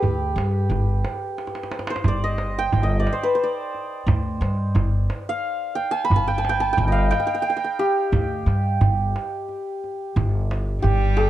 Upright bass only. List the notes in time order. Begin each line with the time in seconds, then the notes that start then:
0.02 D2
0.36 G2
0.70 G1
2.05 G1
2.73 G1
4.07 D2
4.41 G2
4.75 G1
6.10 G1
6.78 G1
8.12 D2
8.46 G2
8.81 G1
10.16 G1
10.84 G1